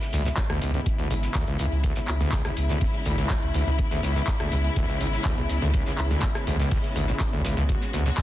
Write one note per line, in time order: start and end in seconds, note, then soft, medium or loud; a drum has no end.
0.00 8.22 C#3 medium
0.00 8.22 G#3 medium
0.00 8.22 B3 medium
0.00 7.67 E4 medium
0.00 snare soft
0.00 closed hi-hat soft
0.00 cabasa soft
0.12 0.31 C#2 loud
0.12 0.23 D2 medium
0.12 snare soft
0.12 closed hi-hat medium
0.12 open hi-hat loud
0.12 cabasa medium
0.25 0.29 B1 medium
0.25 snare soft
0.25 closed hi-hat soft
0.25 cabasa soft
0.37 kick loud
0.37 snare loud
0.37 clap loud
0.37 closed hi-hat medium
0.37 cabasa soft
0.50 0.60 D2 loud
0.50 cross-stick medium
0.50 closed hi-hat soft
0.61 0.72 C#2 medium
0.61 0.79 C#2 loud
0.61 closed hi-hat medium
0.61 open hi-hat loud
0.61 cabasa loud
0.74 0.81 C#2 medium
0.74 closed hi-hat soft
0.74 cabasa soft
0.86 kick loud
0.86 closed hi-hat medium
0.86 cabasa soft
0.98 1.08 D2 medium
0.98 closed hi-hat soft
0.98 cabasa soft
1.10 1.28 G#1 loud
1.10 1.15 B1 medium
1.10 closed hi-hat medium
1.10 open hi-hat loud
1.10 cabasa medium
1.23 snare soft
1.23 closed hi-hat soft
1.23 cabasa soft
1.34 1.45 D2 loud
1.34 kick loud
1.34 snare loud
1.34 clap loud
1.34 closed hi-hat medium
1.34 cabasa medium
1.46 1.57 C#2 medium
1.46 1.56 C#2 medium
1.46 closed hi-hat soft
1.46 cabasa soft
1.58 1.66 C#2 medium
1.58 1.68 C#2 medium
1.58 snare soft
1.58 closed hi-hat medium
1.58 open hi-hat loud
1.58 cabasa medium
1.71 1.89 C#2 medium
1.71 closed hi-hat soft
1.71 cabasa soft
1.84 1.94 D2 medium
1.84 kick loud
1.84 closed hi-hat loud
1.84 closed hi-hat medium
1.84 cabasa medium
1.95 2.00 B1 medium
1.95 snare soft
1.95 closed hi-hat soft
1.95 cabasa soft
2.08 2.26 C#2 loud
2.08 clap medium
2.08 closed hi-hat medium
2.08 open hi-hat loud
2.08 cabasa medium
2.20 2.30 D2 loud
2.20 snare soft
2.20 closed hi-hat soft
2.20 cabasa soft
2.32 kick loud
2.32 snare loud
2.32 clap loud
2.32 closed hi-hat medium
2.32 cabasa medium
2.44 2.51 C#2 medium
2.44 cross-stick medium
2.44 snare soft
2.44 closed hi-hat soft
2.57 2.74 C#2 medium
2.57 closed hi-hat medium
2.57 open hi-hat loud
2.57 cabasa medium
2.69 2.79 D2 medium
2.69 snare soft
2.69 closed hi-hat soft
2.69 cabasa soft
2.81 2.85 B1 medium
2.81 kick loud
2.81 closed hi-hat medium
2.81 open hi-hat medium
2.81 cabasa soft
2.94 closed hi-hat soft
2.94 cabasa soft
3.05 3.23 G#1 loud
3.05 3.16 D2 loud
3.05 closed hi-hat medium
3.05 open hi-hat loud
3.05 cabasa medium
3.17 3.28 C#2 medium
3.17 snare soft
3.17 closed hi-hat soft
3.17 cabasa soft
3.30 kick loud
3.30 snare loud
3.30 clap loud
3.30 closed hi-hat medium
3.30 cabasa medium
3.42 3.51 C#2 medium
3.42 closed hi-hat soft
3.42 cabasa soft
3.54 3.63 C#2 medium
3.54 3.65 D2 medium
3.54 closed hi-hat medium
3.54 open hi-hat loud
3.54 cabasa medium
3.67 3.71 B1 medium
3.67 3.84 C#2 medium
3.67 cabasa soft
3.78 kick loud
3.78 closed hi-hat medium
3.78 cabasa soft
3.91 4.01 D2 loud
3.91 snare medium
3.91 closed hi-hat soft
3.91 cabasa soft
4.03 4.21 C#2 loud
4.03 4.13 C#2 medium
4.03 snare medium
4.03 closed hi-hat medium
4.03 open hi-hat loud
4.03 cabasa medium
4.15 4.22 C#2 medium
4.15 snare soft
4.15 closed hi-hat soft
4.15 cabasa soft
4.27 kick loud
4.27 snare loud
4.27 clap loud
4.27 closed hi-hat medium
4.27 cabasa medium
4.40 4.50 D2 medium
4.40 cross-stick medium
4.40 closed hi-hat soft
4.52 4.56 B1 medium
4.52 4.70 C#2 loud
4.52 closed hi-hat medium
4.52 open hi-hat loud
4.52 cabasa loud
4.64 closed hi-hat soft
4.64 cabasa soft
4.76 4.87 D2 loud
4.76 kick loud
4.76 closed hi-hat medium
4.76 cabasa medium
4.89 4.99 C#2 medium
4.89 closed hi-hat soft
4.89 cabasa soft
5.00 5.18 G#1 loud
5.00 5.08 C#2 medium
5.00 closed hi-hat medium
5.00 open hi-hat loud
5.00 cabasa loud
5.13 snare soft
5.13 closed hi-hat soft
5.13 cabasa soft
5.25 5.35 D2 medium
5.25 kick loud
5.25 snare loud
5.25 clap loud
5.25 closed hi-hat medium
5.25 cabasa medium
5.38 5.42 B1 medium
5.38 5.46 C#2 medium
5.38 closed hi-hat soft
5.38 cabasa soft
5.49 5.59 C#2 loud
5.49 snare soft
5.49 closed hi-hat medium
5.49 open hi-hat loud
5.49 cabasa medium
5.61 5.79 C#2 medium
5.61 5.72 D2 loud
5.61 closed hi-hat soft
5.61 cabasa soft
5.74 5.84 C#2 medium
5.74 kick loud
5.74 closed hi-hat medium
5.74 cabasa medium
5.86 5.93 C#2 medium
5.86 snare soft
5.86 closed hi-hat soft
5.86 cabasa soft
5.98 6.16 C#2 loud
5.98 clap medium
5.98 closed hi-hat medium
5.98 open hi-hat loud
5.98 cabasa loud
6.11 6.21 D2 medium
6.11 snare soft
6.11 closed hi-hat soft
6.11 cabasa soft
6.22 6.27 B1 medium
6.22 kick loud
6.22 snare loud
6.22 clap loud
6.22 closed hi-hat medium
6.22 cabasa soft
6.35 cross-stick medium
6.35 snare soft
6.35 closed hi-hat soft
6.47 6.65 C#2 loud
6.47 6.57 D2 loud
6.47 closed hi-hat medium
6.47 open hi-hat loud
6.47 cabasa medium
6.59 6.69 C#2 medium
6.59 snare soft
6.59 closed hi-hat soft
6.59 cabasa soft
6.71 6.78 C#2 medium
6.71 kick loud
6.71 closed hi-hat medium
6.71 open hi-hat medium
6.71 cabasa soft
6.84 closed hi-hat soft
6.84 cabasa soft
6.96 7.14 G#1 loud
6.96 7.06 D2 medium
6.96 closed hi-hat medium
6.96 open hi-hat loud
6.96 cabasa loud
7.08 7.12 B1 medium
7.08 snare soft
7.08 closed hi-hat soft
7.08 cabasa soft
7.20 kick loud
7.20 snare loud
7.20 clap loud
7.20 closed hi-hat medium
7.20 cabasa medium
7.32 7.41 C#2 loud
7.32 7.43 D2 loud
7.32 closed hi-hat soft
7.32 cabasa soft
7.44 7.54 G#1 medium
7.44 7.55 C#2 medium
7.44 snare loud
7.44 closed hi-hat medium
7.44 open hi-hat loud
7.44 cabasa medium
7.56 7.75 C#2 medium
7.56 7.64 C#2 medium
7.56 snare soft
7.56 closed hi-hat soft
7.56 cabasa soft
7.69 7.76 C#2 medium
7.69 8.22 F#4 medium
7.69 kick loud
7.69 closed hi-hat medium
7.69 cabasa soft
7.81 snare soft
7.81 closed hi-hat soft
7.81 cabasa soft
7.93 8.11 C#2 loud
7.93 8.04 D2 medium
7.93 snare soft
7.93 closed hi-hat medium
7.93 open hi-hat loud
7.93 cabasa medium
8.06 8.10 B1 medium
8.06 snare soft
8.06 closed hi-hat soft
8.06 cabasa soft
8.18 kick loud
8.18 snare loud
8.18 clap loud
8.18 closed hi-hat medium
8.18 cabasa medium